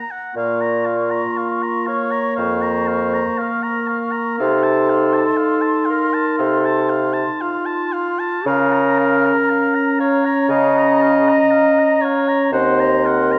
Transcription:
Already playing: A#5
0.11 F#5
0.34 A#2 A#3 F4 F5 C#6
0.62 A#5
0.86 F5
1.11 A#5
1.38 F5
1.63 A#5
1.87 C#5 F5
2.11 A#5
2.36 F2 C5 F5
2.62 A#5
2.88 F5
3.14 A#5
3.38 A#4 F5
3.63 A#5
3.88 F5
4.12 A#5
4.39 C3 D#4 A4 F5 C6
4.63 A5
4.90 F5
5.14 A5
5.37 F5
5.62 A5
5.86 F5
5.90 A#4
6.14 A5
6.38 C3 A4 F5
6.65 A5
6.90 F5
7.14 A5
7.41 F4 F5
7.66 A5
7.93 F5
8.19 A5
8.46 C#3 C#4 A#4 F5 A#5
8.73 A#5
8.98 F5
9.26 A#5
9.50 F5
9.75 A#5
10.00 C#5 F5
10.25 A#5
10.49 C#3 D#5 F5
10.78 A#5
11.02 F5
11.29 A#5
11.52 F5
11.79 A#5
12.01 C#5 F5
12.28 A#5
12.51 D#2 C4 C5 F#5 C6
12.80 A#5
13.04 A#4 F#5
13.32 A#5

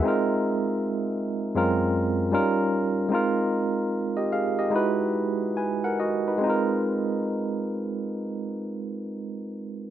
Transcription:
Already playing: G#4 E5
0.03 G#3 C4 D#4
0.07 F4 A#4
1.55 F#2 G#3 C4 C#4 F4 A#4
2.31 G3 C#4 D#4 F4 A#4
3.09 G#3 C4 D#4
3.13 F4 A#4
4.17 G4 D#5
4.32 G#4 F5
4.59 G4 D#5
4.70 G#3 D#4 E4
4.74 F#4 B4
5.57 B4 G#5
5.84 A#4 F#5
6.00 F#4 D#5
6.28 D#4 B4
6.38 G#3 C4
6.44 D#4 F4
6.50 A#4

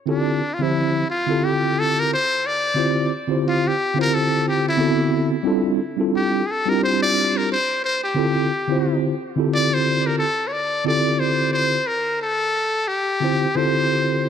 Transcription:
0.06 D3 C4 E4 F4 G4 A4
0.10 D4
0.53 F4
0.59 D3 F3 C4 E4 G4
0.63 C5
1.10 F4
1.26 D3 C4 E4 F4 G4
1.30 A4
1.44 G4
1.79 A4
1.99 A#4
2.13 C5
2.46 D5
2.75 D3 C4 E4 F4 G4 C5
3.27 D3 C4 E4 F4 G4 C5
3.48 F4
3.67 G4
3.94 D3 C4 E4 F4 G4
3.99 A#4 C5
4.14 A4
4.48 G4
4.68 E4
4.76 D3 B3 C4 E4 F#4 A4
5.43 G3 C4 D4 E4 F4 A4
5.97 G3 C4 D4 E4 F4 A4
6.16 G4
6.46 G#4
6.51 A4
6.65 G3 C4 D4 E4 F4 G4
6.69 A#4
6.83 C5
7.02 D5
7.37 A#4
7.52 C5
7.84 C5
8.03 G4
8.14 D3 C4 E4 F4 G4 A4
8.68 D3 C4 E4 F4 G4
8.72 C5
9.36 D3 C4 E4 F4 G4
9.40 A4
9.54 D5
9.74 C5
10.06 A#4
10.18 A4
10.47 C#5
10.52 D5
10.84 D3 C4 E4 F4 G4 A4 D5
11.19 C5
11.53 C5
11.87 A#4
12.22 A4
12.87 G4
13.20 D3 C4 E4 F4 G4
13.24 C5
13.55 D3 C4 E4 F4 G4 A4 C5

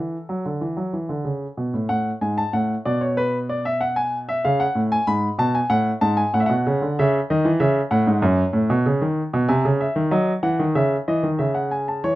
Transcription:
Already playing: E3 A4
0.29 F#3
0.45 D3
0.61 E3
0.77 F#3
0.93 E3
1.09 D3
1.25 C#3
1.57 B2
1.74 A2
1.89 A2 F#5
2.21 G#2 G#5
2.38 A5
2.53 A2 F#5
2.85 B2 D5
3.01 C#5
3.17 B4
3.49 D5
3.65 E5
3.81 F#5
3.96 G#5
4.29 E5
4.45 C#3 F5
4.60 F#5
4.75 A2
4.92 G#5
5.07 G#2 B5
5.38 B2 A5
5.55 G#5
5.70 A2 F#5
6.01 G#2 A5
6.17 G#5
6.34 A2 F#5
6.40 E5
6.46 B2 F#5
6.67 C#3
6.82 D3
6.99 C#3 E5
7.30 D#3 D#5
7.45 E3
7.60 C#3 E5
7.91 A2 F#5
8.07 G#2
8.22 F#2
8.53 A2
8.70 B2
8.86 C#3
9.02 D#3
9.34 B2
9.48 C3 G#5
9.65 C#3
9.80 E5
9.96 D#3
10.11 F#3 D#5
10.43 E3 F#5
10.59 D#3
10.75 C#3 E5
11.08 E3 D#5
11.23 D#3
11.39 C#3 E5
11.55 F#5
11.71 G#5
11.88 A5
12.04 E3 C#5

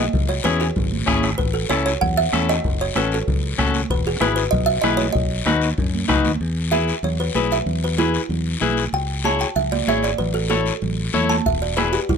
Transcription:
Already playing: D#5
0.13 C#2, bombo low, high conga, low conga, long guiro
0.29 C#5
0.44 E2 C#4 E4 G#4 B4, bombo rim, high conga, short guiro
0.60 G#4, short guiro
0.76 G#1, bombo low, high conga, low conga, long guiro
0.92 high conga
1.06 G#1 C#4 E4 G#4, bombo low, bombo rim, high conga, short guiro
1.23 bombo rim, high conga, short guiro
1.38 A1 B4, bombo low, high conga, long guiro
1.54 A4
1.69 C#2 C#4 E4 A4 C#5, bombo rim, high conga, short guiro
1.86 C#5, short guiro
2.01 E2 F#5, bombo low, high conga, low conga, long guiro
2.17 E5
2.33 E2 C#4 E4 A4, bombo rim, high conga, short guiro
2.49 D#5, bombo rim, short guiro
2.64 F#1, bombo low, high conga, long guiro
2.81 C#5
2.95 A1 C#4 F#4 A4 B4, bombo rim, high conga, short guiro
3.12 A4, short guiro
3.28 C#2, bombo low, high conga, low conga, long guiro
3.58 C#2 C#4 F#4 A4, bombo low, bombo rim, high conga, short guiro
3.74 high conga, short guiro
3.90 E1 B4, bombo low, high conga, long guiro
4.07 G#4
4.20 G#1 E4 G#4 B4, bombo rim, high conga, short guiro
4.36 B4, short guiro
4.51 B1 D#5, bombo low, high conga, low conga, long guiro
4.66 E5
4.82 B1 E4 G#4 B4 D#5, bombo rim, high conga, short guiro
4.97 C#5, high conga, short guiro
5.12 B1 D#5, bombo low, long guiro
5.46 D#2 D#4 F#4 B4, bombo rim, high conga, short guiro
5.61 short guiro
5.78 F#2, bombo low, high conga, low conga, long guiro
5.94 high conga
6.08 C#2 D#4 F#4 B4, bombo low, bombo rim, high conga, low conga, short guiro
6.25 D#2, high conga, short guiro
6.41 E2, high conga, long guiro
6.71 E4 G#4 B4 E5, high conga, short guiro
6.88 short guiro
7.03 E2 C#5, high conga, low conga, long guiro
7.20 B4
7.35 B1 E4 G#4 B4, high conga, short guiro
7.51 E5, short guiro
7.66 E2, high conga, low conga, long guiro
7.84 B4
7.98 E4 G#4 B4, high conga, short guiro
8.14 short guiro
8.29 E2, high conga, low conga, long guiro
8.61 B1 E4 G#4 B4, high conga, low conga, short guiro
8.77 short guiro
8.93 C#2 G5, long guiro
9.24 E4 G#4 C#5 A5, high conga, short guiro
9.39 G5, short guiro
9.56 C#2 E5, high conga, low conga, long guiro
9.72 D5, high conga
9.87 G#1 E4 G#4 C#5 E5, high conga, short guiro
10.03 D5, short guiro
10.18 A1 B4, high conga, low conga, long guiro
10.34 A4
10.50 E4 A4 C#5, high conga, short guiro
10.66 short guiro
10.82 A1, high conga, low conga, long guiro
11.13 E2 E4 A4 C#5, high conga, low conga, short guiro
11.29 A5, high conga, short guiro
11.46 E1 E5, bombo low, high conga, long guiro
11.62 D5
11.77 E4 G#4 B4, bombo rim, high conga, short guiro
11.93 G4, short guiro
12.09 E1 E4, bombo low, high conga, low conga, long guiro

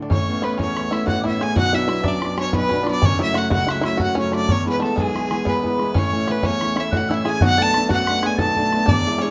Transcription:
Already playing: D3
0.02 D4
0.10 A1 A2 C#4 C#5 C#6, bodhran
0.29 A3 B3 C#4
0.42 A3 B3 C#4 B4 B5, bodhran
0.58 E2 C#4 C#5 C#6, bodhran
0.76 A3 B3 C#4, bodhran
0.91 A3 B3 C#4 E4 E5 E6, bodhran
1.07 A1 A2 F#4 F#5 F#6, bodhran
1.21 A3 E4 D6
1.25 B3 C#4 E5 E6, bodhran
1.40 A3 B3 C#4 G#4 G#5 G#6, bodhran
1.56 B1 B2 F#4 F#5 F#6, bodhran
1.73 F#3 B3 D4 E4 E5 E6
1.88 F#3 B3 D4 E4, bodhran
2.03 F#2 D4 D5 D6, bodhran
2.22 F#3 B3 D4, bodhran
2.37 F#3 B3 C#4 D4 C#5 C#6, bodhran
2.53 B1 B2 B3 B4 B5, bodhran
2.69 F#3 B3 C#4 D4, bodhran
2.83 F#3 B3 D4, bodhran
2.91 D5
3.02 F#1 F#2 C#4 C#5 C#6, bodhran
3.19 F#3 A3 C#4 E4 E5 E6
3.34 F#3 A3 C#4 F#4 F#5 F#6, bodhran
3.50 C#2 F#4 F#5 F#6, bodhran
3.67 F#3 A3 C#4 E4, bodhran
3.71 E5
3.81 F#3 A3 E4 E5, bodhran
3.85 C#4 E6
3.97 F#1 F#2 F#4 F#6, bodhran
4.03 F#5
4.15 F#3 A3 C#4 C#6, bodhran
4.20 C#5
4.32 F#3 A3 C#4 D4 D5 D6, bodhran
4.49 E1 E2 C#4 C#5 C#6, bodhran
4.66 E3 G#3 B3 B4 B5
4.80 E3 G#3 A3 B3 A4 A5, bodhran
4.96 B1 G#3 G#5, bodhran
5.00 G#4
5.14 E3 G#3 B3, bodhran
5.31 E3 G#3 B3, bodhran
5.45 E1 E2 B3 B4 B5, bodhran
5.63 E3 G#3 B3, bodhran
5.78 E3 G#3 B3, bodhran
5.94 A1 A2 C#4 C#5 C#6, bodhran
6.13 E3 A3 C#4
6.27 E3 A3 B3 C#4 B4, bodhran
6.43 E2 C#4 C#5 C#6, bodhran
6.61 E3 A3 C#4, bodhran
6.76 E3 A3 C#4 E4 E5, bodhran
6.91 A1 A2 F#4 F#6, bodhran
6.96 F#5
7.09 E3 A3 C#4 E4 E6, bodhran
7.14 E5
7.24 E3 A3 C#4 G#4 G#6, bodhran
7.29 G#5
7.41 B1 B2 F#4 F#6, bodhran
7.45 F#5
7.58 A3 B3 D4 A4 A6
7.62 A5
7.74 A3 B3 D4, bodhran
7.89 F#2 F#4 F#5 F#6, bodhran
8.07 A3 B3 D4, bodhran
8.23 A3 B3 D4 G#4 G#5 G#6, bodhran
8.37 B1 B2 A4 A5 A6, bodhran
8.56 A3 B3 D4, bodhran
8.72 A3 B3 D4, bodhran
8.86 E1 E2 D4 D5 D6, bodhran
9.06 G#3 D4 E4
9.18 G#3 C#4 D4 C#5
9.23 E4

